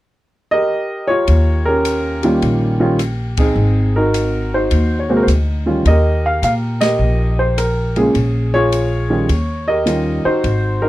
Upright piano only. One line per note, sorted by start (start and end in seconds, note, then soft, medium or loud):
0.51 1.08 G4 medium
0.51 1.63 A#4 medium
0.51 1.11 D#5 loud
1.07 2.20 F4 medium
1.07 1.66 G4 medium
1.07 1.62 C#5 loud
1.65 2.23 C#4 medium
1.65 2.21 G4 medium
1.65 2.25 A#4 loud
2.23 2.77 D#3 medium
2.23 2.77 G3 medium
2.23 3.34 A#3 medium
2.23 2.77 C#4 medium
2.23 2.77 F4 medium
2.23 3.34 G4 medium
2.80 2.97 D#3 medium
2.80 2.98 G3 medium
2.80 2.98 C#4 medium
2.80 2.98 F4 medium
3.38 4.49 C4 medium
3.38 3.96 D#4 medium
3.38 3.97 G#4 medium
3.96 4.54 D#4 medium
3.96 4.54 F#4 medium
3.96 4.54 A#4 medium
4.54 5.64 D#4 medium
4.54 5.08 F#4 medium
4.54 4.97 C5 medium
4.99 5.10 C#5 medium
5.09 5.26 C3 medium
5.09 5.26 G#3 medium
5.09 5.27 A#3 medium
5.09 5.27 F#4 medium
5.09 5.16 C5 medium
5.17 5.23 A#4 medium
5.23 5.29 C5 medium
5.66 5.83 D#3 medium
5.66 5.84 G3 medium
5.66 5.84 C#4 medium
5.66 5.84 F4 medium
5.87 6.81 G4 medium
5.87 6.80 A#4 medium
5.87 6.26 D#5 loud
6.26 6.43 F5 loud
6.44 6.53 F5 medium
6.81 7.92 G4 medium
6.81 7.56 A#4 medium
6.81 7.40 D#5 loud
7.39 7.58 C5 medium
7.58 7.97 A#4 medium
7.96 8.13 C#3 medium
7.96 8.13 G#3 medium
7.96 8.13 A#3 medium
7.96 9.07 C#4 medium
7.96 8.13 F4 medium
7.96 8.49 G#4 medium
8.54 9.09 F4 medium
8.54 9.26 G#4 medium
8.54 9.71 C#5 loud
9.10 9.27 D#3 medium
9.10 9.27 G3 medium
9.10 9.27 C#4 medium
9.10 9.27 F4 medium
9.68 10.40 G4 medium
9.68 10.40 A#4 medium
9.68 10.27 D#5 loud
9.86 10.21 D#3 medium
9.86 10.21 G3 soft
9.86 10.21 C#4 soft
9.86 10.21 F4 medium
10.25 10.81 D#4 medium
10.25 10.81 F#4 medium
10.25 10.84 C5 medium
10.82 10.89 D#4 medium
10.82 10.89 F#4 medium
10.82 10.89 A#4 medium